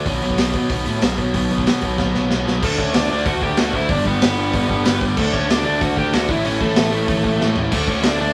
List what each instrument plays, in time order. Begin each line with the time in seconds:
0.05 picked electric bass B1, distorted electric guitar B2 F#3 B3, kick, open hi-hat
0.22 picked electric bass B1, distorted electric guitar B2 F#3 B3, open hi-hat
0.30 kick
0.38 picked electric bass B1, distorted electric guitar B2 F#3 B3, snare, open hi-hat
0.53 picked electric bass B2, distorted electric guitar B2 F#3 B3, kick, open hi-hat
0.69 picked electric bass B1, distorted electric guitar B2 F#3 B3, kick, open hi-hat
0.86 picked electric bass A2, distorted electric guitar B2 F#3 B3, open hi-hat
1.02 picked electric bass B1, distorted electric guitar B2 F#3 B3, snare, open hi-hat
1.18 picked electric bass B1, distorted electric guitar B2 F#3 B3, kick, open hi-hat
1.34 picked electric bass B1, distorted electric guitar B2 F#3 B3, kick, open hi-hat
1.50 picked electric bass B1, distorted electric guitar B2 F#3 B3, open hi-hat
1.58 kick
1.66 distorted electric guitar B2 F#3 B3, picked electric bass B2, snare, open hi-hat
1.81 picked electric bass B1, distorted electric guitar B2 F#3 B3, kick, open hi-hat
1.98 picked electric bass B1, distorted electric guitar B2 F#3 B3, kick, snare
2.15 picked electric bass B1, distorted electric guitar B2 F#3 B3, snare
2.30 picked electric bass B1, distorted electric guitar B2 F#3 B3, snare
2.45 picked electric bass B1, distorted electric guitar B2 F#3 B3, snare
2.62 picked electric bass D2, distorted electric guitar D3 A3 D4, lead electric guitar A3 A4, kick, crash
2.78 picked electric bass D2, distorted electric guitar D3 A3 D4, lead electric guitar C#4 C#5, kick
2.94 picked electric bass D2, distorted electric guitar D3 A3 D4, lead electric guitar D4 D5, snare, open hi-hat
3.10 picked electric bass D2, distorted electric guitar D3 A3 D4, lead electric guitar D4 D5
3.25 picked electric bass D2, distorted electric guitar D3 A3 D4, lead electric guitar F#4 F#5, kick, open hi-hat
3.42 picked electric bass D2, distorted electric guitar D3 A3 D4, lead electric guitar G4 G5, kick
3.57 picked electric bass D2, distorted electric guitar D3 A3 D4, lead electric guitar F#4 F#5, snare, open hi-hat
3.73 picked electric bass D2, distorted electric guitar D3 A3 D4, lead electric guitar E4 E5, kick
3.88 picked electric bass G1, distorted electric guitar G2 D3 G3, lead electric guitar D4 D5, kick, open hi-hat
4.05 picked electric bass G1, distorted electric guitar G2 D3 G3, lead electric guitar B3 B4, kick
4.21 picked electric bass G1, distorted electric guitar G2 D3 G3, snare, open hi-hat
4.37 distorted electric guitar G2 D3 G3
4.53 picked electric bass G1, distorted electric guitar G2 D3 G3, kick, open hi-hat
4.69 picked electric bass G1, distorted electric guitar G2 D3 G3, kick
4.85 picked electric bass G1, distorted electric guitar G2 D3 G3, snare, open hi-hat
5.01 picked electric bass G1, distorted electric guitar G2 D3 G3, kick
5.17 picked electric bass D2, distorted electric guitar D3 A3 D4, lead electric guitar A3 A4, kick, crash
5.33 picked electric bass D2, distorted electric guitar D3 A3 D4, lead electric guitar C#4 C#5, kick
5.48 picked electric bass D2, distorted electric guitar D3 A3 D4, lead electric guitar D4 D5, snare, open hi-hat
5.65 picked electric bass D2, distorted electric guitar D3 A3 D4, lead electric guitar D4 D5
5.81 picked electric bass D2, distorted electric guitar D3 A3 D4, lead electric guitar F#4 F#5, kick, open hi-hat
5.96 picked electric bass D2, distorted electric guitar D3 A3 D4, lead electric guitar G4 G5, kick
6.12 picked electric bass D2, distorted electric guitar D3 A3 D4, lead electric guitar F#4 F#5, snare, open hi-hat
6.29 picked electric bass A1, distorted electric guitar A2 E3 A3, lead electric guitar E4 E5, kick
6.44 picked electric bass A1, distorted electric guitar A2 E3 A3, lead electric guitar C#4 C#5, open hi-hat
6.60 picked electric bass A1, distorted electric guitar A2 E3 A3, lead electric guitar A3 A4, kick
6.76 picked electric bass A1, distorted electric guitar A2 E3 A3, snare, open hi-hat
6.91 distorted electric guitar A2 E3 A3
7.07 picked electric bass A1, distorted electric guitar A2 E3 A3, kick, open hi-hat
7.23 picked electric bass A1, distorted electric guitar A2 E3 A3, kick
7.40 picked electric bass A1, distorted electric guitar A2 E3 A3, snare
7.56 picked electric bass A1, distorted electric guitar A2 E3 A3, floor tom
7.72 picked electric bass D2, distorted electric guitar D3 A3 D4, lead electric guitar A3 A4, kick, open hi-hat, crash
7.87 picked electric bass D2, distorted electric guitar D3 A3 D4, lead electric guitar C#4 C#5, kick
8.02 picked electric bass D2, distorted electric guitar D3 A3 D4, lead electric guitar D4 D5, snare, open hi-hat
8.18 picked electric bass D2, distorted electric guitar D3 A3 D4, lead electric guitar D4 D5